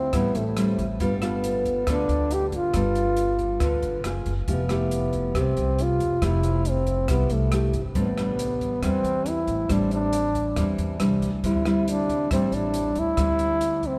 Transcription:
Already playing: D3 G3 C4 E4
0.13 A1 A2 G3 B3 C4 E4, kick, cross-stick, closed hi-hat
0.35 A1 A3, closed hi-hat
0.57 G3 C4 E4, cross-stick, closed hi-hat
0.78 A1, kick, closed hi-hat
1.00 G1 G3 B3 F4 A4, kick, closed hi-hat
1.22 B3 F4 A4, cross-stick, closed hi-hat
1.44 closed hi-hat
1.65 kick, closed hi-hat
1.87 D2 D3 B3 D4 F4 A4, kick, cross-stick, closed hi-hat
2.09 D2, closed hi-hat
2.31 G4, closed hi-hat
2.48 G1 G4, kick
2.52 F4, closed hi-hat
2.74 G1 G3 B3 F4 A4, kick, cross-stick, closed hi-hat
2.95 closed hi-hat
3.17 closed hi-hat
3.39 kick, closed hi-hat
3.60 D2 D3 B3 F4 A4, kick, cross-stick, closed hi-hat
3.82 G1, closed hi-hat
4.04 F#1 A#3 F4 G#4, cross-stick, closed hi-hat
4.26 F#1, kick, closed hi-hat
4.48 F1 F3 A3 B3 E4 G4, kick, closed hi-hat
4.69 A3 E4 G4, cross-stick, closed hi-hat
4.91 closed hi-hat
5.13 kick, closed hi-hat
5.35 C2 C3 A3 G4, kick, cross-stick, closed hi-hat
5.39 C4
5.57 C2, closed hi-hat
5.79 F4, closed hi-hat
6.00 F1, kick, closed hi-hat
6.22 F1 F3 A3 E4 G4, kick, cross-stick, closed hi-hat
6.43 closed hi-hat
6.65 closed hi-hat
6.69 C4
6.87 kick, closed hi-hat
7.08 C2 C3 A3 B3 E4 G4, kick, cross-stick, closed hi-hat
7.30 C2, closed hi-hat
7.34 A3
7.52 A3 E4 G4, cross-stick, closed hi-hat
7.73 G1, kick, closed hi-hat
7.95 A1 A2 G3 C4 D4, kick, closed hi-hat
7.99 B3
8.17 G3 D4, cross-stick, closed hi-hat
8.39 closed hi-hat
8.61 kick, closed hi-hat
8.82 E2 E3 G3 C4 D4, kick, cross-stick, closed hi-hat
9.04 E2, closed hi-hat
9.26 E4, closed hi-hat
9.47 A1, kick, closed hi-hat
9.69 A1 A2 G3 C4 D4, kick, cross-stick, closed hi-hat
9.91 D4, closed hi-hat
10.13 closed hi-hat
10.35 kick, closed hi-hat
10.56 E2 E3 G3 C4 D4, kick, cross-stick, closed hi-hat
10.78 E2, closed hi-hat
11.00 C2 G3 C4 D4, cross-stick, closed hi-hat
11.22 D2, kick, closed hi-hat
11.44 D2 D3 G3 C4 E4, kick, closed hi-hat
11.65 G3 C4 E4, cross-stick, closed hi-hat
11.88 D4, closed hi-hat
12.09 kick, closed hi-hat
12.31 A1 A2 G3 C4 E4, kick, cross-stick, closed hi-hat
12.52 A1 D4, closed hi-hat
12.74 closed hi-hat
12.95 D2 E4, kick, closed hi-hat
13.17 D2 D3 G3 C4 E4, kick, cross-stick, closed hi-hat
13.39 closed hi-hat
13.61 closed hi-hat
13.83 kick, closed hi-hat
13.87 C4

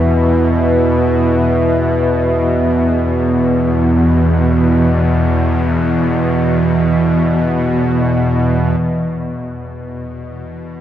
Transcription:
Already playing: E2 B2 E4 B4 E5
8.79 E2 B2 B4

